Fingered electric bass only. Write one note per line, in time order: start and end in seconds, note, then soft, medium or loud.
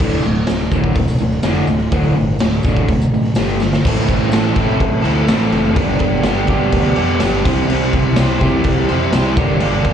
0.01 0.20 D1 medium
0.25 0.44 D1 loud
0.49 0.68 D1 medium
0.72 0.91 D1 medium
0.96 1.15 D1 loud
1.20 1.39 D1 loud
1.44 1.64 F1 loud
1.67 1.87 D1 medium
1.92 2.11 D1 medium
2.16 2.35 G1 medium
2.41 2.60 D1 loud
2.64 2.83 D1 medium
2.88 3.07 D1 loud
3.10 3.30 A1 medium
3.35 3.74 G1 medium
3.85 4.07 A1 medium
4.08 4.31 A1 medium
4.31 4.54 A1 loud
4.57 4.79 A1 medium
4.80 5.02 A1 loud
5.04 5.27 D2 medium
5.29 5.51 A1 loud
5.53 5.75 F#1 medium
5.76 5.98 G1 loud
6.00 6.22 G1 medium
6.25 6.47 G1 loud
6.49 6.71 G2 medium
6.73 6.95 D2 medium
6.98 7.19 F2 medium
7.22 7.43 G1 loud
7.46 7.67 C2 medium
7.70 7.92 C2 medium
7.93 8.15 C2 medium
8.19 8.40 C2 loud
8.41 8.63 C2 medium
8.65 8.87 C2 loud
8.91 9.12 F2 medium
9.14 9.35 C2 loud
9.37 9.59 G1 medium
9.63 9.84 G1 loud
9.85 9.93 G1 medium